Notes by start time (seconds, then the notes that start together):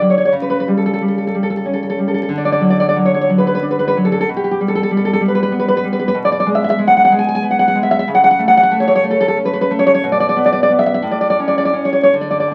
Already playing: D3 D4
0.01 F#3
0.10 C#5
0.18 C#5
0.25 C#5
0.32 C#3
0.42 B4
0.50 B4
0.60 B4
0.68 G3
0.77 A4
0.86 A4
0.93 A4
1.01 G3
1.08 A4
1.18 A4
1.27 A4
1.35 G3
1.43 A4
1.50 A4
1.57 A4
1.65 C#4
1.73 A4
1.83 A4
1.90 A4
1.99 G3
2.08 A4
2.14 A4
2.23 A4
2.29 D3
2.38 D5
2.45 D5
2.52 D5
2.60 F#3
2.70 D5
2.80 D5
2.89 D5
2.96 F#3
3.05 C#5
3.14 C#5
3.21 C#5
3.29 F#3
3.38 B4
3.47 B4
3.55 B4
3.63 D4
3.71 B4
3.79 B4
3.88 B4
3.97 F#3
4.05 A4
4.12 A4
4.21 A4
4.29 B2
4.37 G4
4.44 G4
4.51 G4
4.61 G3
4.68 A4
4.75 A4
4.83 A4
4.91 G3
4.97 A4
5.05 A4
5.13 A4
5.21 G3
5.28 B4
5.35 B4
5.43 B4
5.52 B3
5.59 B4
5.68 B4
5.77 B4
5.84 G3
5.93 B4
5.99 B4
6.08 B4
6.14 B2
6.25 D5
6.32 D5
6.40 D5
6.46 G#3
6.55 E5
6.64 E5
6.70 E5
6.79 G#3
6.87 F#5
6.97 F#5
7.05 F#5
7.12 G#3
7.19 G#5
7.29 G#5
7.35 G#5
7.43 B3
7.51 F#5
7.59 F#5
7.68 F#5
7.75 G#3
7.83 E5
7.91 E5
7.99 E5
8.08 C#3
8.15 F#5
8.24 F#5
8.31 F#5
8.39 A3
8.48 F#5
8.57 F#5
8.63 F#5
8.71 A3
8.80 C#5
8.88 C#5
8.96 C#5
9.04 A3
9.11 A4
9.21 A4
9.28 A4
9.37 C#4
9.45 B4
9.53 B4
9.61 B4
9.71 A3
9.79 C#5
9.87 C#5
9.95 C#5
10.04 B2
10.12 D5
10.20 D5
10.29 D5
10.36 B3
10.46 D5
10.53 D5
10.63 D5
10.70 B3
10.79 E5
10.86 E5
10.94 E5
11.02 A2
11.11 D5
11.21 D5
11.30 D5
11.40 C#4
11.48 D5
11.58 D5
11.65 D5
11.73 C#4
11.85 C#5
11.93 C#5
12.03 C#5
12.13 D3
12.21 D5
12.31 D5
12.40 D5